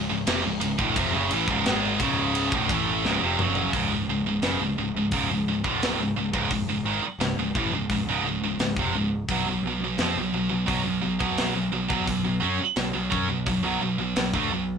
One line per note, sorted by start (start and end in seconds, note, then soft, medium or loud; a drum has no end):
0.10 0.26 C#1 medium
0.10 0.27 C#2 medium
0.10 0.27 G#2 medium
0.27 0.43 F1 medium
0.27 0.44 F2 medium
0.27 0.44 C3 medium
0.27 snare loud
0.27 ride loud
0.45 0.61 C#1 medium
0.45 0.61 C#2 medium
0.45 0.61 G#2 medium
0.61 0.78 C#1 medium
0.61 0.79 C#2 medium
0.61 0.79 G#2 medium
0.61 ride medium
0.79 0.95 D1 medium
0.79 0.95 D2 medium
0.79 0.96 A2 medium
0.79 kick loud
0.96 1.12 F1 medium
0.96 1.12 F2 loud
0.96 1.13 C3 loud
0.96 kick loud
0.96 ride loud
1.14 1.30 F#1 loud
1.14 1.30 F#2 medium
1.14 1.30 C#3 medium
1.31 1.47 A1 medium
1.31 1.47 A2 loud
1.31 1.47 E3 loud
1.31 ride medium
1.48 1.64 C#1 loud
1.48 1.64 C#2 medium
1.48 1.64 G#2 medium
1.48 kick medium
1.65 1.98 G#1 medium
1.65 1.99 G#2 medium
1.65 1.99 D#3 medium
1.65 1.99 G#3 medium
1.65 snare loud
1.65 ride medium
2.00 2.48 C#1 medium
2.00 2.51 C#2 medium
2.00 2.51 G#2 loud
2.00 2.51 C#3 loud
2.00 kick loud
2.00 ride medium
2.35 ride medium
2.52 2.68 D1 loud
2.52 2.68 D2 medium
2.52 2.67 A2 loud
2.52 kick loud
2.69 3.01 A1 medium
2.69 3.02 A2 medium
2.69 3.03 E3 loud
2.69 3.03 A3 loud
2.69 kick loud
2.69 ride medium
3.03 3.20 C#1 medium
3.03 3.20 C#2 medium
3.03 3.20 G#2 medium
3.03 snare medium
3.21 3.38 F1 medium
3.21 3.37 F2 loud
3.21 3.38 C3 loud
3.38 3.71 F#1 medium
3.38 3.72 F#2 medium
3.38 3.72 C#3 medium
3.38 3.72 F#3 loud
3.38 mid tom loud
3.55 floor tom medium
3.73 3.89 C#1 medium
3.73 3.89 C#2 medium
3.73 3.90 G#2 loud
3.73 kick loud
3.73 open hi-hat medium
3.90 4.06 C#1 medium
3.90 4.07 C#2 medium
3.90 4.07 G#2 medium
4.07 4.23 C#1 medium
4.07 4.24 C#2 medium
4.07 4.25 G#2 medium
4.24 4.41 C#1 medium
4.24 4.41 C#2 medium
4.24 4.42 G#2 medium
4.42 4.58 F#1 medium
4.42 4.58 F#2 medium
4.42 4.59 C#3 medium
4.42 snare loud
4.42 open hi-hat medium
4.59 4.76 C#1 medium
4.59 4.76 C#2 medium
4.59 4.76 G#2 medium
4.76 4.93 C#1 medium
4.76 4.93 C#2 medium
4.76 4.93 G#2 medium
4.94 5.10 C#1 medium
4.94 5.10 C#2 medium
4.94 5.11 G#2 medium
5.11 5.28 C#1 medium
5.11 5.28 C#2 loud
5.11 5.28 G#2 loud
5.11 kick medium
5.11 open hi-hat medium
5.29 5.45 C#1 medium
5.29 5.46 C#2 medium
5.29 5.46 G#2 medium
5.47 5.63 C#1 medium
5.47 5.63 C#2 medium
5.47 5.64 G#2 medium
5.64 5.97 D1 medium
5.64 5.97 D2 medium
5.64 5.98 A2 medium
5.64 5.98 D3 medium
5.64 kick loud
5.82 snare loud
5.82 open hi-hat medium
5.98 6.14 C#1 medium
5.98 6.15 C#2 medium
5.98 6.15 G#2 medium
6.16 6.32 C#1 medium
6.16 6.31 C#2 medium
6.16 6.32 G#2 medium
6.32 6.50 C#1 medium
6.32 6.49 C#2 medium
6.32 6.49 G#2 medium
6.32 kick loud
6.50 6.66 C#1 medium
6.50 6.66 C#2 medium
6.50 6.66 G#2 medium
6.50 kick medium
6.50 open hi-hat medium
6.66 6.83 C#1 medium
6.66 6.83 C#2 medium
6.66 6.82 G#2 medium
6.83 7.01 G#1 medium
6.83 7.01 G#2 medium
6.83 7.01 D#3 medium
7.02 muted picked electric bass stroke soft
7.02 muted distorted electric guitar stroke medium
7.19 7.35 C#1 medium
7.19 7.35 C#2 medium
7.19 7.36 G#2 medium
7.19 snare loud
7.19 open hi-hat soft
7.36 7.53 C#1 medium
7.36 7.53 C#2 medium
7.36 7.54 G#2 medium
7.54 7.70 A1 medium
7.54 7.71 A2 medium
7.54 7.71 E3 loud
7.54 kick loud
7.71 7.88 C#1 medium
7.71 7.88 C#2 medium
7.71 7.89 G#2 medium
7.89 8.04 C#1 medium
7.89 8.05 C#2 medium
7.89 8.06 G#2 medium
7.89 kick medium
7.89 open hi-hat medium
8.05 8.22 C#1 loud
8.05 8.23 C#2 medium
8.05 8.23 G#2 loud
8.22 8.38 C#1 medium
8.22 8.40 C#2 medium
8.22 8.40 G#2 medium
8.39 8.56 C#1 medium
8.39 8.58 C#2 medium
8.39 8.58 G#2 medium
8.57 8.74 C#1 medium
8.57 8.76 C#2 medium
8.57 8.76 G#2 medium
8.57 snare loud
8.57 open hi-hat medium
8.76 8.92 F1 medium
8.76 8.93 F2 medium
8.76 8.93 C3 loud
8.76 kick loud
8.93 9.26 C#1 medium
8.93 9.22 C#2 medium
8.93 9.22 G#2 medium
9.28 9.45 B1 medium
9.28 9.45 B2 loud
9.28 9.45 F#3 loud
9.28 kick loud
9.28 open hi-hat medium
9.45 9.62 B1 medium
9.45 9.62 B2 medium
9.45 9.62 F#3 medium
9.63 9.79 B1 medium
9.63 9.79 B2 medium
9.63 9.79 F#3 medium
9.67 9.83 B2 medium
9.79 9.96 B1 medium
9.79 9.98 B2 medium
9.79 9.97 F#3 medium
9.97 10.14 F2 medium
9.97 10.14 F3 medium
9.97 10.15 C4 medium
9.97 snare loud
9.97 open hi-hat medium
10.15 10.32 B1 medium
10.15 10.32 B2 medium
10.15 10.33 F#3 medium
10.33 10.49 B1 medium
10.33 10.50 B2 medium
10.33 10.50 F#3 medium
10.51 10.67 B1 medium
10.51 10.66 B2 medium
10.51 10.67 F#3 medium
10.68 10.84 B1 medium
10.68 10.84 B2 loud
10.68 10.84 F#3 loud
10.68 kick loud
10.68 open hi-hat medium
10.86 11.02 B1 medium
10.86 11.01 B2 medium
10.86 11.02 F#3 medium
11.02 11.19 B1 medium
11.02 11.18 B2 medium
11.02 11.18 F#3 medium
11.19 11.53 B1 loud
11.19 11.53 B2 medium
11.19 11.53 F#3 medium
11.19 11.53 B3 medium
11.19 kick loud
11.38 snare loud
11.38 open hi-hat medium
11.54 11.70 B1 medium
11.54 11.71 B2 medium
11.54 11.71 F#3 medium
11.72 11.88 B1 medium
11.72 11.88 B2 soft
11.72 11.89 F#3 medium
11.89 12.06 B1 medium
11.89 12.05 B2 medium
11.89 12.06 F#3 loud
11.89 kick loud
12.06 12.23 B1 medium
12.06 12.23 B2 medium
12.06 12.23 F#3 medium
12.06 kick medium
12.06 open hi-hat medium
12.24 12.40 B1 medium
12.24 12.42 B2 medium
12.24 12.41 F#3 medium
12.42 12.58 F#2 medium
12.42 12.58 F#3 loud
12.42 12.59 C#4 medium
12.59 muted picked electric bass stroke soft
12.59 muted distorted electric guitar stroke medium
12.76 12.93 B1 medium
12.76 12.94 B2 medium
12.76 12.94 F#3 medium
12.76 snare loud
12.76 open hi-hat medium
12.94 13.10 B1 medium
12.94 13.12 B2 medium
12.94 13.11 F#3 medium
13.12 13.27 F#2 medium
13.12 13.28 F#3 loud
13.12 13.28 C#4 medium
13.12 kick loud
13.28 13.44 B1 medium
13.28 13.46 B2 medium
13.28 13.46 F#3 medium
13.46 13.62 B1 medium
13.46 13.62 B2 medium
13.46 13.63 F#3 medium
13.46 kick medium
13.46 open hi-hat medium
13.63 13.79 B1 loud
13.63 13.80 B2 medium
13.63 13.80 F#3 loud
13.80 13.97 B1 medium
13.80 13.98 B2 medium
13.80 13.98 F#3 medium
13.98 14.14 B1 medium
13.98 14.15 B2 soft
13.98 14.16 F#3 medium
14.15 14.32 B1 medium
14.15 14.33 B2 medium
14.15 14.33 F#3 medium
14.15 snare loud
14.15 open hi-hat medium
14.33 14.50 D2 medium
14.33 14.49 D3 loud
14.33 14.50 A3 loud
14.33 kick loud
14.50 14.78 B1 medium
14.50 14.78 B2 medium
14.50 14.78 F#3 medium